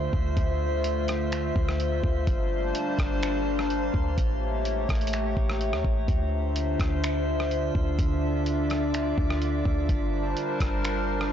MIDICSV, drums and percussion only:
0, 0, Header, 1, 2, 480
1, 0, Start_track
1, 0, Key_signature, -1, "minor"
1, 0, Tempo, 476190
1, 371, Time_signature, 4, 2, 24, 8
1, 11417, End_track
2, 0, Start_track
2, 0, Title_t, "Drums"
2, 132, Note_on_c, 9, 36, 92
2, 233, Note_off_c, 9, 36, 0
2, 371, Note_on_c, 9, 36, 125
2, 371, Note_on_c, 9, 42, 72
2, 471, Note_off_c, 9, 42, 0
2, 472, Note_off_c, 9, 36, 0
2, 849, Note_on_c, 9, 42, 91
2, 950, Note_off_c, 9, 42, 0
2, 1090, Note_on_c, 9, 42, 74
2, 1100, Note_on_c, 9, 37, 104
2, 1190, Note_off_c, 9, 42, 0
2, 1201, Note_off_c, 9, 37, 0
2, 1332, Note_on_c, 9, 42, 95
2, 1337, Note_on_c, 9, 26, 126
2, 1433, Note_off_c, 9, 42, 0
2, 1438, Note_off_c, 9, 26, 0
2, 1570, Note_on_c, 9, 36, 107
2, 1671, Note_off_c, 9, 36, 0
2, 1699, Note_on_c, 9, 37, 90
2, 1800, Note_off_c, 9, 37, 0
2, 1813, Note_on_c, 9, 42, 77
2, 1913, Note_off_c, 9, 42, 0
2, 2052, Note_on_c, 9, 36, 91
2, 2153, Note_off_c, 9, 36, 0
2, 2290, Note_on_c, 9, 42, 71
2, 2291, Note_on_c, 9, 36, 120
2, 2391, Note_off_c, 9, 42, 0
2, 2392, Note_off_c, 9, 36, 0
2, 2770, Note_on_c, 9, 42, 94
2, 2871, Note_off_c, 9, 42, 0
2, 3010, Note_on_c, 9, 36, 99
2, 3010, Note_on_c, 9, 42, 73
2, 3021, Note_on_c, 9, 37, 104
2, 3111, Note_off_c, 9, 36, 0
2, 3111, Note_off_c, 9, 42, 0
2, 3121, Note_off_c, 9, 37, 0
2, 3252, Note_on_c, 9, 42, 91
2, 3258, Note_on_c, 9, 26, 127
2, 3353, Note_off_c, 9, 42, 0
2, 3358, Note_off_c, 9, 26, 0
2, 3618, Note_on_c, 9, 37, 93
2, 3719, Note_off_c, 9, 37, 0
2, 3732, Note_on_c, 9, 42, 71
2, 3833, Note_off_c, 9, 42, 0
2, 3972, Note_on_c, 9, 36, 89
2, 4073, Note_off_c, 9, 36, 0
2, 4211, Note_on_c, 9, 36, 125
2, 4211, Note_on_c, 9, 42, 71
2, 4312, Note_off_c, 9, 36, 0
2, 4312, Note_off_c, 9, 42, 0
2, 4690, Note_on_c, 9, 42, 95
2, 4791, Note_off_c, 9, 42, 0
2, 4930, Note_on_c, 9, 36, 98
2, 4930, Note_on_c, 9, 46, 54
2, 4931, Note_on_c, 9, 42, 43
2, 4941, Note_on_c, 9, 37, 104
2, 4992, Note_off_c, 9, 42, 0
2, 4992, Note_on_c, 9, 42, 54
2, 5031, Note_off_c, 9, 36, 0
2, 5031, Note_off_c, 9, 46, 0
2, 5042, Note_off_c, 9, 37, 0
2, 5052, Note_off_c, 9, 42, 0
2, 5052, Note_on_c, 9, 42, 67
2, 5112, Note_off_c, 9, 42, 0
2, 5112, Note_on_c, 9, 42, 77
2, 5173, Note_off_c, 9, 42, 0
2, 5173, Note_on_c, 9, 42, 93
2, 5178, Note_on_c, 9, 26, 127
2, 5274, Note_off_c, 9, 42, 0
2, 5279, Note_off_c, 9, 26, 0
2, 5411, Note_on_c, 9, 36, 101
2, 5512, Note_off_c, 9, 36, 0
2, 5539, Note_on_c, 9, 37, 97
2, 5640, Note_off_c, 9, 37, 0
2, 5653, Note_on_c, 9, 42, 77
2, 5753, Note_off_c, 9, 42, 0
2, 5777, Note_on_c, 9, 37, 99
2, 5878, Note_off_c, 9, 37, 0
2, 5892, Note_on_c, 9, 36, 93
2, 5993, Note_off_c, 9, 36, 0
2, 6131, Note_on_c, 9, 36, 121
2, 6131, Note_on_c, 9, 42, 69
2, 6232, Note_off_c, 9, 36, 0
2, 6232, Note_off_c, 9, 42, 0
2, 6610, Note_on_c, 9, 42, 89
2, 6711, Note_off_c, 9, 42, 0
2, 6850, Note_on_c, 9, 36, 96
2, 6851, Note_on_c, 9, 42, 75
2, 6861, Note_on_c, 9, 37, 103
2, 6951, Note_off_c, 9, 36, 0
2, 6952, Note_off_c, 9, 42, 0
2, 6962, Note_off_c, 9, 37, 0
2, 7093, Note_on_c, 9, 42, 94
2, 7098, Note_on_c, 9, 26, 124
2, 7193, Note_off_c, 9, 42, 0
2, 7199, Note_off_c, 9, 26, 0
2, 7459, Note_on_c, 9, 37, 92
2, 7560, Note_off_c, 9, 37, 0
2, 7572, Note_on_c, 9, 42, 76
2, 7673, Note_off_c, 9, 42, 0
2, 7812, Note_on_c, 9, 36, 92
2, 7913, Note_off_c, 9, 36, 0
2, 8051, Note_on_c, 9, 36, 126
2, 8051, Note_on_c, 9, 42, 71
2, 8152, Note_off_c, 9, 36, 0
2, 8152, Note_off_c, 9, 42, 0
2, 8530, Note_on_c, 9, 42, 94
2, 8631, Note_off_c, 9, 42, 0
2, 8770, Note_on_c, 9, 42, 74
2, 8781, Note_on_c, 9, 37, 105
2, 8871, Note_off_c, 9, 42, 0
2, 8881, Note_off_c, 9, 37, 0
2, 9012, Note_on_c, 9, 42, 94
2, 9018, Note_on_c, 9, 26, 127
2, 9113, Note_off_c, 9, 42, 0
2, 9118, Note_off_c, 9, 26, 0
2, 9251, Note_on_c, 9, 36, 103
2, 9351, Note_off_c, 9, 36, 0
2, 9378, Note_on_c, 9, 37, 98
2, 9479, Note_off_c, 9, 37, 0
2, 9492, Note_on_c, 9, 42, 73
2, 9593, Note_off_c, 9, 42, 0
2, 9732, Note_on_c, 9, 36, 91
2, 9833, Note_off_c, 9, 36, 0
2, 9971, Note_on_c, 9, 36, 127
2, 9971, Note_on_c, 9, 42, 74
2, 10071, Note_off_c, 9, 42, 0
2, 10072, Note_off_c, 9, 36, 0
2, 10450, Note_on_c, 9, 42, 93
2, 10550, Note_off_c, 9, 42, 0
2, 10689, Note_on_c, 9, 42, 75
2, 10690, Note_on_c, 9, 36, 101
2, 10700, Note_on_c, 9, 37, 105
2, 10790, Note_off_c, 9, 36, 0
2, 10790, Note_off_c, 9, 42, 0
2, 10801, Note_off_c, 9, 37, 0
2, 10932, Note_on_c, 9, 42, 89
2, 10937, Note_on_c, 9, 26, 127
2, 11033, Note_off_c, 9, 42, 0
2, 11038, Note_off_c, 9, 26, 0
2, 11298, Note_on_c, 9, 37, 94
2, 11399, Note_off_c, 9, 37, 0
2, 11417, End_track
0, 0, End_of_file